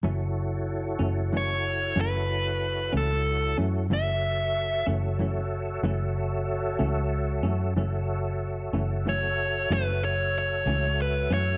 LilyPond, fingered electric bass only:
\new Staff \with { instrumentName = "Fingered electric bass" } { \clef bass \time 12/8 \key fis \minor \tempo 4. = 62 fis,,4. fis,,4. fis,,4. cis,4 fis,8 | fis,,4. fis,,4. fis,,4. cis,4 fis,8 | fis,,4. fis,,4. fis,,4. cis,4 fis,8 | }